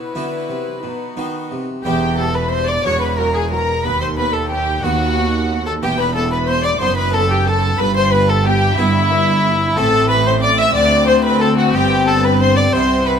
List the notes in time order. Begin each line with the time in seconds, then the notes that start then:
Already playing: B2 E4 F#4 B4
0.15 D3 B3 E4 F#4
0.49 C3
0.83 B2 D#4 F#4
1.17 D#3 B3 D#4 F#4
1.51 C3
1.85 E1 E2 G3 B3 E4 G4 G5
2.18 G3 A4 A5
2.34 B4 B5
2.50 G3 C5 C6
2.67 D5 D6
2.84 E1 E2 F#3 C#4 F#4 C#5 C#6
3.01 B4 B5
3.18 F#3 A#4 A#5
3.34 G#4 G#5
3.51 F#3 A#4 A#5
3.84 D#2 B3 B4 B5
4.01 C5 C6
4.17 B3 B4 B5
4.33 A4 A5
4.50 B3 G4 G5
4.83 D#2 B3 F#4 F#5
5.17 B3
5.50 B3
5.66 A4 A5
5.83 E1 E2 B3 E4 G4 G5
5.99 B4 B5
6.15 B3 A4 A5
6.32 B4 B5
6.48 B3 C5 C6
6.64 D5 D6
6.80 F#1 F#2 B3 D#4 C5 C6
6.97 B4 B5
7.13 B3 A4 A5
7.30 G4 G5
7.46 B3 A4 A5
7.79 G1 G2 B3 B4 B5
7.95 C5 C6
8.12 B3 B4 B5
8.29 A4 A5
8.45 B3 G4 G5
8.77 G1 G2 B3 E4 E5
9.11 B3
9.44 B3
9.76 A1 A2 A3 C4 E4 A4 A5
10.09 B4 B5
10.26 C5 C6
10.42 D5 D6
10.59 E5 E6
10.75 D2 A3 C4 F#4 D5 D6
11.08 C5 C6
11.25 B4 B5
11.41 A4 A5
11.58 F#4 F#5
11.74 G1 G2 B3 G4 G5
12.07 A4 A5
12.23 B4 B5
12.39 C5 C6
12.56 D5 D6
12.73 C2 C3 B3 E4 C5 C6
13.06 B4 B5